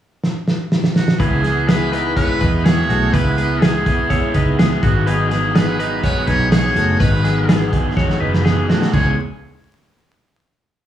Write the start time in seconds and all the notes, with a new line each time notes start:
0.23 snare
0.48 snare
0.72 snare
0.84 snare
0.96 F#4, snare
1.08 snare
1.19 C#2 C#3 G#3 B3 E4 G#4 B4, kick, closed hi-hat
1.43 B3 E4 G#4, snare, closed hi-hat
1.67 G#3 B3 E4 G#4 B4, snare, closed hi-hat
1.92 B3 D#4 E4 G#4 B4, closed hi-hat
2.16 C#3 G#3 B3 E4 G#4 B4 C#5, kick, closed hi-hat
2.41 E2 B3 D#4 E4 G#4 B4, kick, closed hi-hat
2.64 G#3 B3 E4 G#4 C#5, snare, closed hi-hat
2.89 B1 A3 B3 E4 F#4 G#4, closed hi-hat
3.13 C#2 C#3 G#3 B3 E4 G#4 B4, kick, closed hi-hat
3.38 B3 E4 G#4, closed hi-hat
3.61 G#3 B3 E4 G#4, snare, closed hi-hat
3.86 B3 E4 G#4, kick, closed hi-hat
4.10 C#3 G#3 B3 E4 G#4 C#5, kick, closed hi-hat
4.34 C#2 B3 D#4 E4 G#4 B4, kick, closed hi-hat
4.59 G#3 B3 E4 G#4, snare, closed hi-hat
4.83 G#1 F#3 B3 D#4 F#4 G#4, kick, closed hi-hat
5.07 G#2 D#3 F#3 B3 D#4 G#4 B4, closed hi-hat
5.31 F#3 B3 D#4 G#4, snare, closed hi-hat
5.55 F#3 B3 D#4 G#4 B4, snare, closed hi-hat
5.79 F#3 B3 D#4 G#4 B4, closed hi-hat
6.04 G#2 D#3 F#3 B3 D#4 F#4 G#4 B4 C#5, kick, closed hi-hat
6.27 B1 F#3 B3 D#4 G#4 B4 C#5, kick, closed hi-hat
6.51 F#3 B3 D#4 G#4 C#5, snare, closed hi-hat
6.76 F#1 F#3 A3 B3 D#4 F#4 G#4, closed hi-hat
6.99 G#1 G#2 D#3 F#3 B3 D#4 G#4 B4, kick, closed hi-hat
7.24 F#3 B3 D#4 G#4, snare, closed hi-hat
7.49 F#3 B3 D#4 G#4, snare, closed hi-hat
7.72 F#3 B3 D#4 G#4, kick, closed hi-hat
7.97 G#2 D#3 F#3 B3 D#4 F#4 G#4 C#5, kick, snare
8.10 snare
8.21 F#1 F#3 B3 D#4 G#4 B4
8.34 snare
8.44 F#3 B3 D#4 G#4, snare
8.68 F#3 A3 B3 D#4 F#4 G#4, snare
8.82 snare
8.92 C#2 C#3 E3 G#3 B3 C#4 G#4 C#5, kick, crash